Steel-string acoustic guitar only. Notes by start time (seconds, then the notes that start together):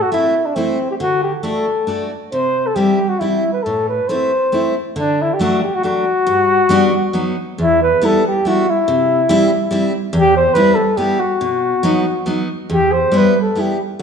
0.12 A3 C4 E4
0.56 A3 C4 E4
1.00 D3
1.43 A3 D4 F#4
1.87 A3 D4 F#4
2.32 C3
2.76 G3 C4 E4
3.21 G3 C4 E4
3.66 A2
4.09 A3 C4 E4
4.52 A3 C4 E4
4.96 D3
5.39 F#3 A3 D4
5.83 F#3 A3 D4
6.27 G2
6.69 G3 B3 D4
7.13 F#3 B3 D#4
7.58 E2
8.01 G3 B3 E4
8.45 G3 B3 E4
8.88 C3
9.29 G3 C4 E4
9.71 G3 C4 E4
10.13 E2
10.55 G3 B3 E4
10.97 G3 B3 E4
11.41 B2
11.83 F#3 B3 D#4
12.26 F#3 B3 D#4
12.70 E2
13.12 G3 B3 E4
13.55 G3 B3 E4